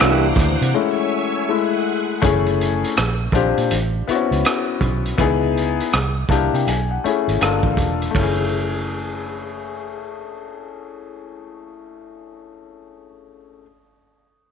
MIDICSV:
0, 0, Header, 1, 7, 480
1, 0, Start_track
1, 0, Tempo, 740741
1, 1440, Time_signature, 4, 2, 24, 8
1, 9407, End_track
2, 0, Start_track
2, 0, Title_t, "String machine"
2, 0, Program_c, 0, 50
2, 0, Note_on_c, 0, 78, 75
2, 3, Note_on_c, 0, 82, 70
2, 6, Note_on_c, 0, 72, 71
2, 7, Note_on_c, 0, 86, 77
2, 460, Note_off_c, 0, 78, 0
2, 477, Note_off_c, 0, 82, 0
2, 478, Note_off_c, 0, 72, 0
2, 479, Note_off_c, 0, 86, 0
2, 483, Note_on_c, 0, 73, 70
2, 484, Note_on_c, 0, 88, 82
2, 487, Note_on_c, 0, 76, 80
2, 487, Note_on_c, 0, 80, 73
2, 957, Note_off_c, 0, 73, 0
2, 959, Note_off_c, 0, 80, 0
2, 964, Note_on_c, 0, 78, 65
2, 965, Note_on_c, 0, 68, 73
2, 1432, Note_off_c, 0, 88, 0
2, 1434, Note_off_c, 0, 76, 0
2, 1437, Note_off_c, 0, 78, 0
2, 1438, Note_off_c, 0, 68, 0
2, 9407, End_track
3, 0, Start_track
3, 0, Title_t, "Grand piano"
3, 0, Program_c, 1, 0
3, 0, Control_c, 1, 64, 127
3, 0, Note_on_c, 1, 52, 57
3, 0, Note_on_c, 1, 66, 82
3, 0, Note_on_c, 1, 76, 109
3, 3, Note_on_c, 1, 58, 47
3, 7, Note_on_c, 1, 62, 59
3, 10, Control_c, 1, 64, 0
3, 130, Control_c, 1, 64, 127
3, 455, Note_off_c, 1, 52, 0
3, 457, Note_off_c, 1, 58, 0
3, 460, Note_off_c, 1, 62, 0
3, 481, Note_on_c, 1, 56, 49
3, 481, Note_on_c, 1, 57, 44
3, 483, Note_on_c, 1, 61, 48
3, 486, Note_on_c, 1, 64, 53
3, 489, Control_c, 1, 64, 0
3, 591, Control_c, 1, 64, 127
3, 821, Note_off_c, 1, 56, 0
3, 822, Note_off_c, 1, 57, 0
3, 823, Note_off_c, 1, 61, 0
3, 824, Note_off_c, 1, 64, 0
3, 933, Note_off_c, 1, 76, 0
3, 940, Note_off_c, 1, 66, 0
3, 964, Note_on_c, 1, 56, 55
3, 966, Note_on_c, 1, 57, 49
3, 968, Control_c, 1, 64, 0
3, 972, Note_on_c, 1, 64, 59
3, 1064, Control_c, 1, 64, 127
3, 1418, Note_off_c, 1, 56, 0
3, 1419, Note_off_c, 1, 57, 0
3, 1422, Note_off_c, 1, 64, 0
3, 1436, Note_on_c, 1, 57, 99
3, 1444, Note_on_c, 1, 61, 85
3, 1448, Control_c, 1, 64, 0
3, 1450, Note_on_c, 1, 64, 84
3, 1457, Note_on_c, 1, 68, 104
3, 1545, Control_c, 1, 64, 127
3, 1918, Note_off_c, 1, 57, 0
3, 1922, Note_off_c, 1, 61, 0
3, 1925, Note_off_c, 1, 64, 0
3, 1928, Note_off_c, 1, 68, 0
3, 1930, Control_c, 1, 64, 0
3, 2046, Control_c, 1, 64, 127
3, 2158, Note_on_c, 1, 60, 86
3, 2165, Note_on_c, 1, 62, 73
3, 2169, Note_on_c, 1, 65, 71
3, 2177, Note_on_c, 1, 67, 90
3, 2399, Note_off_c, 1, 60, 0
3, 2402, Note_off_c, 1, 62, 0
3, 2404, Note_off_c, 1, 65, 0
3, 2408, Note_off_c, 1, 67, 0
3, 2410, Control_c, 1, 64, 0
3, 2529, Control_c, 1, 64, 127
3, 2641, Note_on_c, 1, 59, 76
3, 2645, Note_on_c, 1, 60, 56
3, 2651, Note_on_c, 1, 64, 70
3, 2660, Note_on_c, 1, 66, 80
3, 2688, Note_on_c, 1, 61, 69
3, 2695, Note_off_c, 1, 60, 0
3, 3257, Note_off_c, 1, 59, 0
3, 3262, Note_off_c, 1, 64, 0
3, 3267, Note_off_c, 1, 66, 0
3, 3280, Note_off_c, 1, 61, 0
3, 3354, Note_on_c, 1, 59, 94
3, 3361, Note_on_c, 1, 63, 82
3, 3367, Note_on_c, 1, 64, 85
3, 3369, Control_c, 1, 64, 0
3, 3374, Note_on_c, 1, 68, 107
3, 3462, Control_c, 1, 64, 127
3, 3837, Note_off_c, 1, 59, 0
3, 3840, Note_off_c, 1, 63, 0
3, 3843, Note_off_c, 1, 64, 0
3, 3847, Note_off_c, 1, 68, 0
3, 3849, Control_c, 1, 64, 0
3, 3962, Control_c, 1, 64, 127
3, 4078, Note_on_c, 1, 58, 74
3, 4084, Note_on_c, 1, 62, 70
3, 4087, Note_on_c, 1, 81, 65
3, 4090, Note_on_c, 1, 64, 64
3, 4096, Note_on_c, 1, 67, 82
3, 4222, Note_off_c, 1, 81, 0
3, 4239, Note_on_c, 1, 79, 54
3, 4319, Note_off_c, 1, 58, 0
3, 4319, Note_off_c, 1, 79, 0
3, 4322, Note_off_c, 1, 62, 0
3, 4325, Note_off_c, 1, 64, 0
3, 4326, Note_on_c, 1, 80, 55
3, 4328, Note_off_c, 1, 67, 0
3, 4329, Control_c, 1, 64, 0
3, 4427, Control_c, 1, 64, 127
3, 4461, Note_off_c, 1, 80, 0
3, 4477, Note_on_c, 1, 78, 51
3, 4558, Note_off_c, 1, 78, 0
3, 4563, Note_on_c, 1, 57, 69
3, 4568, Note_on_c, 1, 61, 60
3, 4574, Note_on_c, 1, 76, 55
3, 4577, Note_on_c, 1, 64, 64
3, 4583, Note_on_c, 1, 68, 71
3, 4791, Note_off_c, 1, 76, 0
3, 4800, Note_on_c, 1, 58, 78
3, 4801, Note_off_c, 1, 57, 0
3, 4804, Note_off_c, 1, 61, 0
3, 4806, Note_on_c, 1, 62, 66
3, 4808, Note_off_c, 1, 64, 0
3, 4808, Control_c, 1, 64, 0
3, 4810, Note_on_c, 1, 77, 60
3, 4812, Note_off_c, 1, 68, 0
3, 4813, Note_on_c, 1, 65, 69
3, 4819, Note_on_c, 1, 69, 83
3, 4924, Control_c, 1, 64, 127
3, 5214, Note_off_c, 1, 58, 0
3, 5217, Note_off_c, 1, 62, 0
3, 5221, Note_off_c, 1, 65, 0
3, 5223, Note_off_c, 1, 69, 0
3, 5254, Note_on_c, 1, 57, 61
3, 5259, Note_off_c, 1, 77, 0
3, 5278, Note_on_c, 1, 61, 53
3, 5287, Control_c, 1, 64, 0
3, 5304, Note_on_c, 1, 64, 54
3, 5330, Note_on_c, 1, 68, 68
3, 5401, Control_c, 1, 64, 127
3, 8133, Note_off_c, 1, 57, 0
3, 8145, Note_off_c, 1, 61, 0
3, 8158, Note_off_c, 1, 64, 0
3, 8171, Note_off_c, 1, 68, 0
3, 8827, Control_c, 1, 64, 0
3, 9407, End_track
4, 0, Start_track
4, 0, Title_t, "Clean electric guitar"
4, 0, Program_c, 2, 27
4, 13, Note_on_c, 2, 52, 78
4, 16, Note_on_c, 2, 58, 85
4, 16, Note_on_c, 2, 62, 87
4, 20, Note_on_c, 2, 67, 92
4, 163, Note_off_c, 2, 52, 0
4, 164, Note_off_c, 2, 58, 0
4, 164, Note_off_c, 2, 62, 0
4, 166, Note_off_c, 2, 67, 0
4, 9407, End_track
5, 0, Start_track
5, 0, Title_t, "Fingered electric bass"
5, 0, Program_c, 3, 33
5, 10, Note_on_c, 3, 36, 89
5, 201, Note_off_c, 3, 36, 0
5, 235, Note_on_c, 3, 38, 86
5, 358, Note_off_c, 3, 38, 0
5, 398, Note_on_c, 3, 48, 90
5, 468, Note_off_c, 3, 48, 0
5, 1446, Note_on_c, 3, 30, 93
5, 1834, Note_off_c, 3, 30, 0
5, 1930, Note_on_c, 3, 34, 80
5, 2121, Note_off_c, 3, 34, 0
5, 2157, Note_on_c, 3, 34, 80
5, 2279, Note_off_c, 3, 34, 0
5, 2317, Note_on_c, 3, 46, 82
5, 2388, Note_off_c, 3, 46, 0
5, 2408, Note_on_c, 3, 33, 94
5, 2600, Note_off_c, 3, 33, 0
5, 2795, Note_on_c, 3, 37, 74
5, 2866, Note_off_c, 3, 37, 0
5, 3119, Note_on_c, 3, 35, 74
5, 3315, Note_off_c, 3, 35, 0
5, 3363, Note_on_c, 3, 37, 84
5, 3752, Note_off_c, 3, 37, 0
5, 3847, Note_on_c, 3, 36, 84
5, 4039, Note_off_c, 3, 36, 0
5, 4076, Note_on_c, 3, 36, 76
5, 4199, Note_off_c, 3, 36, 0
5, 4233, Note_on_c, 3, 48, 76
5, 4305, Note_off_c, 3, 48, 0
5, 4323, Note_on_c, 3, 35, 79
5, 4517, Note_off_c, 3, 35, 0
5, 4716, Note_on_c, 3, 32, 62
5, 4787, Note_off_c, 3, 32, 0
5, 4806, Note_on_c, 3, 31, 73
5, 4924, Note_off_c, 3, 31, 0
5, 4945, Note_on_c, 3, 33, 76
5, 5021, Note_off_c, 3, 33, 0
5, 5039, Note_on_c, 3, 28, 60
5, 5234, Note_off_c, 3, 28, 0
5, 5282, Note_on_c, 3, 30, 71
5, 8147, Note_off_c, 3, 30, 0
5, 9407, End_track
6, 0, Start_track
6, 0, Title_t, "Muted fingered electric bass strokes"
6, 2647, Note_on_c, 9, 29, 38
6, 2712, Note_off_c, 9, 29, 0
6, 4567, Note_on_c, 9, 29, 40
6, 4631, Note_off_c, 9, 29, 0
6, 9407, End_track
7, 0, Start_track
7, 0, Title_t, "Drums"
7, 1, Note_on_c, 9, 26, 67
7, 1, Note_on_c, 9, 82, 66
7, 2, Note_on_c, 9, 42, 56
7, 6, Note_on_c, 9, 37, 104
7, 66, Note_off_c, 9, 26, 0
7, 66, Note_off_c, 9, 82, 0
7, 67, Note_off_c, 9, 42, 0
7, 71, Note_off_c, 9, 37, 0
7, 143, Note_on_c, 9, 82, 46
7, 207, Note_off_c, 9, 82, 0
7, 233, Note_on_c, 9, 36, 90
7, 238, Note_on_c, 9, 82, 43
7, 252, Note_on_c, 9, 37, 33
7, 252, Note_on_c, 9, 42, 56
7, 298, Note_off_c, 9, 36, 0
7, 302, Note_off_c, 9, 82, 0
7, 316, Note_off_c, 9, 42, 0
7, 317, Note_off_c, 9, 37, 0
7, 391, Note_on_c, 9, 82, 38
7, 403, Note_on_c, 9, 42, 44
7, 455, Note_off_c, 9, 82, 0
7, 468, Note_off_c, 9, 42, 0
7, 1442, Note_on_c, 9, 36, 107
7, 1453, Note_on_c, 9, 42, 74
7, 1507, Note_off_c, 9, 36, 0
7, 1518, Note_off_c, 9, 42, 0
7, 1598, Note_on_c, 9, 42, 31
7, 1663, Note_off_c, 9, 42, 0
7, 1693, Note_on_c, 9, 42, 56
7, 1758, Note_off_c, 9, 42, 0
7, 1842, Note_on_c, 9, 42, 52
7, 1907, Note_off_c, 9, 42, 0
7, 1924, Note_on_c, 9, 42, 55
7, 1928, Note_on_c, 9, 37, 96
7, 1988, Note_off_c, 9, 42, 0
7, 1993, Note_off_c, 9, 37, 0
7, 2153, Note_on_c, 9, 36, 84
7, 2168, Note_on_c, 9, 42, 53
7, 2218, Note_off_c, 9, 36, 0
7, 2233, Note_off_c, 9, 42, 0
7, 2319, Note_on_c, 9, 42, 43
7, 2383, Note_off_c, 9, 42, 0
7, 2403, Note_on_c, 9, 42, 77
7, 2468, Note_off_c, 9, 42, 0
7, 2648, Note_on_c, 9, 42, 54
7, 2713, Note_off_c, 9, 42, 0
7, 2801, Note_on_c, 9, 42, 42
7, 2866, Note_off_c, 9, 42, 0
7, 2883, Note_on_c, 9, 42, 78
7, 2893, Note_on_c, 9, 37, 94
7, 2948, Note_off_c, 9, 42, 0
7, 2958, Note_off_c, 9, 37, 0
7, 3116, Note_on_c, 9, 36, 75
7, 3119, Note_on_c, 9, 42, 48
7, 3181, Note_off_c, 9, 36, 0
7, 3184, Note_off_c, 9, 42, 0
7, 3277, Note_on_c, 9, 42, 39
7, 3341, Note_off_c, 9, 42, 0
7, 3359, Note_on_c, 9, 36, 107
7, 3365, Note_on_c, 9, 42, 69
7, 3423, Note_off_c, 9, 36, 0
7, 3429, Note_off_c, 9, 42, 0
7, 3612, Note_on_c, 9, 42, 54
7, 3677, Note_off_c, 9, 42, 0
7, 3761, Note_on_c, 9, 42, 49
7, 3826, Note_off_c, 9, 42, 0
7, 3842, Note_on_c, 9, 42, 49
7, 3846, Note_on_c, 9, 37, 91
7, 3907, Note_off_c, 9, 42, 0
7, 3911, Note_off_c, 9, 37, 0
7, 4074, Note_on_c, 9, 36, 77
7, 4092, Note_on_c, 9, 37, 28
7, 4092, Note_on_c, 9, 42, 53
7, 4139, Note_off_c, 9, 36, 0
7, 4156, Note_off_c, 9, 42, 0
7, 4157, Note_off_c, 9, 37, 0
7, 4242, Note_on_c, 9, 42, 43
7, 4306, Note_off_c, 9, 42, 0
7, 4326, Note_on_c, 9, 42, 70
7, 4391, Note_off_c, 9, 42, 0
7, 4571, Note_on_c, 9, 42, 50
7, 4636, Note_off_c, 9, 42, 0
7, 4722, Note_on_c, 9, 42, 43
7, 4787, Note_off_c, 9, 42, 0
7, 4803, Note_on_c, 9, 42, 70
7, 4812, Note_on_c, 9, 37, 89
7, 4867, Note_off_c, 9, 42, 0
7, 4877, Note_off_c, 9, 37, 0
7, 4945, Note_on_c, 9, 36, 76
7, 5010, Note_off_c, 9, 36, 0
7, 5036, Note_on_c, 9, 36, 64
7, 5043, Note_on_c, 9, 42, 50
7, 5101, Note_off_c, 9, 36, 0
7, 5108, Note_off_c, 9, 42, 0
7, 5196, Note_on_c, 9, 42, 38
7, 5261, Note_off_c, 9, 42, 0
7, 5280, Note_on_c, 9, 36, 81
7, 5285, Note_on_c, 9, 51, 67
7, 5345, Note_off_c, 9, 36, 0
7, 5350, Note_off_c, 9, 51, 0
7, 9407, End_track
0, 0, End_of_file